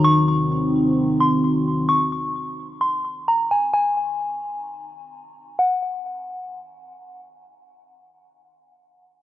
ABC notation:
X:1
M:4/4
L:1/8
Q:1/4=130
K:Ebdor
V:1 name="Synth bell"
d'4- d' c'3 | d'4 c'2 b a | a6 z2 | g6 z2 |
z8 |]
V:2 name="Analog synth pad"
[E,CEG]8 | z8 | z8 | z8 |
z8 |]